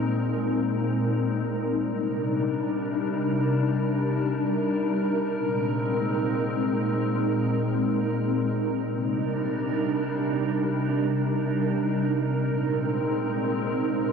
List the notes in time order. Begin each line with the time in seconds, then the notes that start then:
Already playing: A#2 G#3 C4 D#4 A#4
1.81 C3 G3 D4
5.34 A#2 G#3 C4 D#4
8.87 C3 G3 D4 D#4 A#4
12.40 A#2 G#3 C4